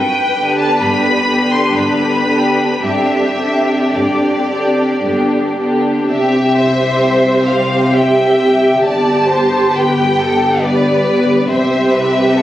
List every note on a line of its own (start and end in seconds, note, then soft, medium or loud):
0.00 0.67 G2 medium
0.00 2.79 B4 medium
0.00 0.52 G5 medium
0.34 1.25 D3 soft
0.34 1.25 B3 soft
0.34 1.25 D4 soft
0.34 1.24 G4 soft
0.59 0.81 A5 medium
0.80 1.61 G2 medium
0.80 1.51 B5 medium
1.26 2.25 D3 soft
1.26 2.25 B3 soft
1.26 2.25 D4 soft
1.26 2.24 G4 soft
1.52 1.75 C6 medium
1.75 2.67 G2 soft
1.75 2.83 B5 medium
2.27 2.81 D3 soft
2.27 2.81 B3 soft
2.27 2.81 D4 soft
2.27 2.81 G4 soft
2.82 3.79 G2 soft
2.82 3.36 D3 soft
2.82 3.37 C4 soft
2.82 3.37 D4 soft
2.82 3.37 G4 soft
2.82 5.56 G4 soft
2.82 3.92 E5 medium
3.38 4.45 D3 soft
3.38 4.45 C4 soft
3.38 4.47 D4 soft
3.38 4.46 G4 soft
3.94 4.88 G2 soft
3.94 5.57 D5 soft
4.46 5.00 D3 soft
4.46 5.00 C4 soft
4.46 5.01 D4 soft
4.46 5.01 G4 soft
5.01 5.93 G2 soft
5.01 5.55 D3 soft
5.01 5.54 B3 soft
5.01 5.56 D4 soft
5.01 5.56 G4 soft
5.56 6.06 D3 soft
5.56 6.06 B3 soft
5.56 6.07 D4 soft
5.56 6.07 G4 soft
6.06 8.78 C2 soft
6.06 8.79 C3 soft
6.06 8.78 C4 medium
6.06 11.45 G4 medium
6.06 6.52 G4 medium
6.06 7.45 E5 medium
6.55 7.94 C5 medium
7.46 7.92 F5 medium
7.95 8.83 E5 medium
7.95 8.83 G5 medium
8.82 11.45 G1 medium
8.82 11.45 G2 medium
8.82 11.45 B3 soft
8.82 9.28 D5 medium
8.82 9.71 A5 medium
9.28 9.72 C5 medium
9.73 10.18 B4 soft
9.73 10.62 G5 medium
10.19 10.63 A4 soft
10.62 11.48 B4 medium
10.62 11.49 D5 medium
11.49 12.42 C2 medium
11.49 12.42 C3 medium
11.49 12.42 C4 medium
11.49 12.42 G4 medium
11.49 11.92 C5 medium
11.49 12.42 E5 medium
11.93 12.36 B4 soft
12.36 12.42 A4 medium